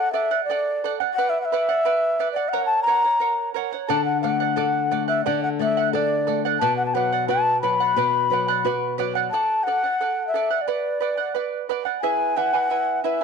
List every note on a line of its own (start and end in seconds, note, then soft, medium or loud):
0.00 0.12 A4 medium
0.00 0.13 D5 medium
0.00 0.12 F#5 loud
0.00 0.14 F#5 medium
0.13 0.31 A4 medium
0.13 0.32 D5 medium
0.13 0.44 E5 medium
0.13 0.30 F#5 medium
0.31 0.49 D5 soft
0.31 0.49 F#5 medium
0.45 0.94 D5 medium
0.50 0.83 A4 medium
0.50 0.84 D5 medium
0.50 0.84 F#5 medium
0.84 1.01 A4 medium
0.84 1.00 D5 medium
0.84 0.99 F#5 medium
1.00 1.17 D5 soft
1.00 1.17 F#5 medium
1.13 1.31 F#5 loud
1.18 1.51 B4 medium
1.18 1.52 D5 medium
1.18 1.52 F#5 medium
1.30 1.41 E5 medium
1.41 2.32 E5 loud
1.41 1.47 F#5 medium
1.52 1.69 B4 medium
1.52 1.69 D5 medium
1.52 1.68 F#5 medium
1.69 1.84 D5 medium
1.69 1.85 F#5 medium
1.85 2.18 B4 medium
1.85 2.19 D5 medium
1.85 2.19 F#5 medium
2.19 2.37 B4 medium
2.19 2.36 D5 medium
2.19 2.35 F#5 medium
2.32 2.50 D5 medium
2.32 2.52 F#5 medium
2.37 2.54 D5 soft
2.49 2.65 F#5 loud
2.53 2.85 A#4 medium
2.53 2.87 C#5 medium
2.53 2.87 F#5 medium
2.66 2.82 A5 loud
2.83 3.49 A#5 loud
2.87 3.04 A#4 medium
2.87 3.04 C#5 medium
2.87 3.03 F#5 medium
3.04 3.20 C#5 soft
3.04 3.20 F#5 medium
3.20 3.53 A#4 medium
3.20 3.54 C#5 medium
3.20 3.55 F#5 medium
3.54 3.72 A#4 medium
3.54 3.73 C#5 medium
3.54 3.71 F#5 medium
3.72 3.90 C#5 soft
3.72 3.89 F#5 medium
3.88 5.21 D3 medium
3.88 4.22 A4 medium
3.88 4.23 D5 medium
3.88 4.23 F#5 medium
3.88 4.04 A5 medium
4.05 4.21 F#5 medium
4.22 4.57 A3 medium
4.22 4.40 A4 medium
4.22 4.41 D5 medium
4.22 5.04 F#5 medium
4.22 4.39 F#5 medium
4.40 4.56 D5 soft
4.40 4.56 F#5 medium
4.56 4.90 A4 medium
4.56 4.90 D5 medium
4.56 4.91 F#5 medium
4.91 5.25 A3 medium
4.91 5.08 A4 medium
4.91 5.08 D5 medium
4.91 5.07 F#5 medium
5.08 5.25 D5 soft
5.08 5.24 E5 medium
5.08 5.25 F#5 soft
5.25 6.58 D3 medium
5.25 5.59 A4 medium
5.25 5.41 D5 medium
5.25 5.60 D5 medium
5.25 5.60 F#5 medium
5.43 5.49 F#5 medium
5.59 5.92 A3 medium
5.59 5.77 A4 medium
5.59 5.77 D5 medium
5.59 5.92 E5 medium
5.59 5.76 F#5 medium
5.77 5.93 D5 soft
5.77 5.94 F#5 medium
5.93 6.26 A4 medium
5.93 6.41 D5 medium
5.93 6.26 D5 medium
5.93 6.28 F#5 medium
6.27 6.60 A3 medium
6.27 6.44 A4 medium
6.27 6.44 D5 medium
6.27 6.44 F#5 medium
6.45 6.60 D5 medium
6.45 6.61 F#5 medium
6.60 7.93 B2 medium
6.60 6.94 B4 medium
6.60 6.95 D5 medium
6.60 6.95 F#5 medium
6.60 6.76 A5 medium
6.77 6.85 F#5 loud
6.86 6.96 A5 medium
6.94 7.28 F#3 medium
6.94 7.12 B4 medium
6.94 7.12 D5 medium
6.94 7.28 F#5 medium
6.94 7.11 F#5 medium
7.13 7.28 D5 soft
7.13 7.29 F#5 medium
7.28 7.62 F#4 medium
7.28 7.62 B4 medium
7.28 7.62 D5 medium
7.28 7.63 F#5 medium
7.28 7.60 A5 loud
7.62 7.96 F#3 medium
7.62 7.80 B4 medium
7.62 7.80 D5 medium
7.62 7.79 F#5 medium
7.62 8.93 B5 loud
7.80 7.96 D5 soft
7.80 7.97 F#5 medium
7.96 9.28 B2 medium
7.96 8.30 B4 medium
7.96 8.31 D5 medium
7.96 8.31 F#5 medium
8.30 8.63 F#3 medium
8.30 8.48 B4 medium
8.30 8.48 D5 medium
8.30 8.47 F#5 medium
8.48 8.64 D5 soft
8.48 8.65 F#5 medium
8.65 8.97 F#4 medium
8.65 8.97 B4 medium
8.65 8.98 D5 medium
8.65 8.99 F#5 medium
8.98 9.31 F#3 medium
8.98 9.15 B4 medium
8.98 9.15 D5 medium
8.98 9.14 F#5 medium
9.15 9.32 D5 medium
9.15 9.32 F#5 medium
9.31 9.66 A4 medium
9.31 9.66 D5 medium
9.31 9.67 F#5 medium
9.31 9.65 A5 loud
9.63 9.83 A4 soft
9.63 10.27 F#5 loud
9.67 9.83 D5 medium
9.67 9.83 F#5 medium
9.84 10.00 D5 soft
9.84 10.00 F#5 soft
10.01 10.33 A4 medium
10.01 10.34 D5 medium
10.01 10.34 F#5 medium
10.28 10.58 E5 medium
10.34 10.50 A4 medium
10.34 10.51 D5 medium
10.34 10.49 F#5 medium
10.51 10.67 D5 soft
10.51 10.67 F#5 medium
10.58 11.65 D5 medium
10.58 10.62 E5 medium
10.68 10.99 B4 medium
10.68 11.00 D5 medium
10.68 11.01 F#5 medium
11.00 11.17 B4 medium
11.00 11.18 D5 medium
11.00 11.16 F#5 medium
11.17 11.34 D5 soft
11.17 11.34 F#5 soft
11.35 11.68 B4 medium
11.35 11.68 D5 medium
11.35 11.69 F#5 medium
11.69 11.85 B4 medium
11.69 11.85 D5 medium
11.69 11.84 F#5 medium
11.85 12.02 D5 soft
11.85 12.02 F#5 medium
12.01 12.36 E4 medium
12.01 12.36 G#4 medium
12.01 12.36 B4 medium
12.01 12.35 E5 medium
12.01 12.38 G#5 medium
12.01 12.36 G#5 medium
12.36 12.53 E4 medium
12.36 12.53 B4 medium
12.36 12.52 E5 medium
12.36 13.03 F#5 loud
12.36 12.52 G#5 medium
12.53 12.69 E4 soft
12.53 12.70 B4 soft
12.53 12.69 G#5 soft
12.70 13.03 E4 medium
12.70 13.03 B4 medium
12.70 13.03 E5 medium
12.70 13.03 G#5 medium
13.04 13.20 E4 medium
13.04 13.20 B4 medium
13.04 13.20 E5 medium
13.04 13.24 E5 medium
13.04 13.20 G#5 medium
13.21 13.24 G#5 medium